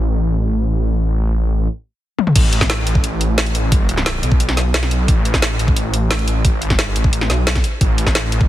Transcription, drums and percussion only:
2.19 high tom medium
2.27 mid tom medium
2.36 kick loud
2.36 closed hi-hat loud
2.36 crash loud
2.53 closed hi-hat medium
2.61 kick medium
2.61 snare soft
2.70 snare loud
2.70 closed hi-hat medium
2.87 closed hi-hat medium
2.95 kick loud
3.04 closed hi-hat loud
3.21 closed hi-hat medium
3.38 snare loud
3.38 closed hi-hat loud
3.46 closed hi-hat soft
3.55 closed hi-hat medium
3.72 kick loud
3.72 closed hi-hat medium
3.89 closed hi-hat medium
3.97 snare soft
4.06 snare loud
4.06 closed hi-hat medium
4.23 closed hi-hat medium
4.32 kick loud
4.40 closed hi-hat medium
4.49 snare soft
4.57 snare soft
4.57 closed hi-hat medium
4.74 snare loud
4.74 closed hi-hat medium
4.83 snare soft
4.83 closed hi-hat soft
4.91 closed hi-hat medium
5.08 kick loud
5.08 closed hi-hat medium
5.25 closed hi-hat medium
5.34 kick medium
5.34 snare soft
5.42 snare loud
5.42 closed hi-hat medium
5.59 closed hi-hat medium
5.68 kick loud
5.76 closed hi-hat medium
5.94 closed hi-hat medium
6.11 snare loud
6.11 closed hi-hat medium
6.19 closed hi-hat soft
6.28 closed hi-hat medium
6.45 kick loud
6.45 closed hi-hat medium
6.62 closed hi-hat medium
6.70 kick medium
6.70 snare soft
6.79 snare loud
6.79 closed hi-hat medium
6.96 closed hi-hat medium
7.04 kick loud
7.13 closed hi-hat medium
7.21 snare soft
7.30 snare soft
7.30 closed hi-hat medium
7.47 snare loud
7.47 closed hi-hat medium
7.55 kick medium
7.55 snare soft
7.55 closed hi-hat soft
7.64 closed hi-hat medium
7.81 kick loud
7.81 closed hi-hat medium
7.98 closed hi-hat medium
8.07 kick medium
8.07 snare soft
8.15 snare loud
8.15 closed hi-hat medium
8.32 closed hi-hat medium
8.41 kick loud

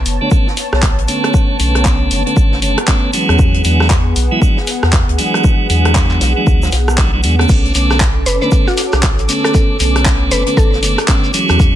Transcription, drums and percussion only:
0.06 open hi-hat medium
0.06 shaker medium
0.31 kick loud
0.31 shaker medium
0.47 snare medium
0.57 snare soft
0.57 open hi-hat loud
0.57 shaker medium
0.73 cross-stick medium
0.73 snare medium
0.82 kick loud
0.82 snare loud
0.82 clap loud
0.82 shaker medium
0.99 closed hi-hat soft
1.08 open hi-hat medium
1.08 shaker medium
1.24 cross-stick medium
1.24 closed hi-hat soft
1.34 kick loud
1.34 shaker medium
1.60 open hi-hat loud
1.60 shaker medium
1.75 cross-stick medium
1.75 closed hi-hat soft
1.85 kick medium
1.85 snare loud
1.85 clap loud
1.85 shaker medium
2.11 open hi-hat medium
2.11 shaker medium
2.27 closed hi-hat soft
2.37 kick loud
2.37 shaker medium
2.52 snare medium
2.62 open hi-hat loud
2.62 shaker medium
2.78 cross-stick medium
2.78 closed hi-hat medium
2.87 kick loud
2.87 snare loud
2.87 clap loud
2.87 shaker medium
3.13 open hi-hat medium
3.13 shaker medium
3.29 cross-stick medium
3.29 closed hi-hat soft
3.39 kick loud
3.39 shaker medium
3.54 closed hi-hat soft
3.64 open hi-hat loud
3.64 shaker medium
3.80 cross-stick medium
3.80 snare medium
3.90 kick loud
3.90 snare loud
3.90 clap loud
3.90 shaker medium
4.16 open hi-hat medium
4.16 shaker medium
4.42 kick loud
4.42 shaker medium
4.57 snare medium
4.67 snare soft
4.67 open hi-hat loud
4.67 shaker medium
4.83 cross-stick medium
4.83 snare medium
4.93 kick loud
4.93 snare loud
4.93 clap loud
4.93 shaker medium
5.09 closed hi-hat soft
5.19 open hi-hat medium
5.19 shaker medium
5.34 cross-stick medium
5.34 closed hi-hat soft
5.44 kick loud
5.44 shaker medium
5.70 open hi-hat loud
5.70 shaker medium
5.85 cross-stick medium
5.85 closed hi-hat soft
5.95 kick loud
5.95 snare loud
5.95 clap loud
5.95 shaker medium
6.11 clap soft
6.21 snare medium
6.21 open hi-hat medium
6.21 shaker medium
6.47 kick loud
6.47 shaker medium
6.62 snare loud
6.62 shaker medium
6.72 snare loud
6.72 open hi-hat loud
6.72 shaker medium
6.88 cross-stick medium
6.88 shaker medium
6.98 kick loud
6.98 snare loud
6.98 clap loud
6.98 shaker medium
7.23 open hi-hat medium
7.23 shaker medium
7.39 cross-stick medium
7.39 closed hi-hat soft
7.49 kick loud
7.49 crash medium
7.49 shaker medium
7.49 shekere soft
7.65 closed hi-hat soft
7.75 open hi-hat loud
7.75 shaker medium
7.75 shekere loud
7.91 cross-stick medium
7.91 snare medium
7.91 shekere soft
8.00 kick loud
8.00 snare loud
8.00 clap loud
8.00 shekere soft
8.00 shaker medium
8.26 open hi-hat loud
8.26 shekere medium
8.26 shaker medium
8.42 shekere soft
8.51 kick loud
8.51 shaker medium
8.51 shekere soft
8.67 snare medium
8.67 shekere soft
8.77 snare soft
8.77 open hi-hat loud
8.77 shaker medium
8.77 shekere medium
8.92 cross-stick medium
8.92 snare medium
8.92 shekere soft
9.03 kick loud
9.03 snare loud
9.03 clap loud
9.03 shaker medium
9.03 shekere medium
9.18 closed hi-hat soft
9.18 shekere soft
9.29 open hi-hat medium
9.29 shaker medium
9.29 shekere medium
9.44 cross-stick medium
9.44 closed hi-hat soft
9.44 shekere soft
9.54 kick loud
9.54 shekere medium
9.54 shaker medium
9.80 open hi-hat loud
9.80 shekere medium
9.80 shaker medium
9.96 cross-stick medium
9.96 closed hi-hat soft
9.96 shekere soft
10.06 kick loud
10.06 snare loud
10.06 clap loud
10.06 shekere medium
10.06 shaker medium
10.31 open hi-hat medium
10.31 shaker medium
10.31 shekere medium
10.47 closed hi-hat soft
10.47 shekere soft
10.57 kick loud
10.57 shaker medium
10.57 shekere medium
10.73 snare medium
10.73 shekere soft
10.83 open hi-hat loud
10.83 shaker medium
10.83 shekere loud
10.98 cross-stick medium
10.98 closed hi-hat soft
10.98 shekere soft
11.08 kick loud
11.08 snare loud
11.08 clap loud
11.08 shekere medium
11.08 shaker medium
11.24 shekere soft
11.34 open hi-hat medium
11.34 shaker medium
11.34 shekere loud
11.49 cross-stick medium
11.49 closed hi-hat soft
11.49 shekere soft
11.60 kick loud
11.60 shaker medium
11.60 shekere medium

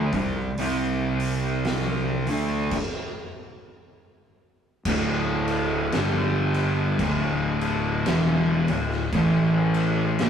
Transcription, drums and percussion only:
0.13 kick loud
0.13 open hi-hat medium
0.58 open hi-hat medium
1.20 open hi-hat medium
1.65 snare loud
1.65 open hi-hat medium
2.27 open hi-hat medium
2.71 kick loud
2.71 crash loud
4.85 kick medium
4.85 crash loud
4.85 crash medium
5.48 crash medium
5.92 snare loud
5.92 crash medium
6.54 crash medium
6.99 kick loud
6.99 crash medium
7.61 crash medium
8.06 snare loud
8.06 crash medium
8.68 crash medium
8.91 snare soft
9.13 kick loud
9.13 crash medium
9.74 crash medium
10.19 snare loud
10.19 crash medium

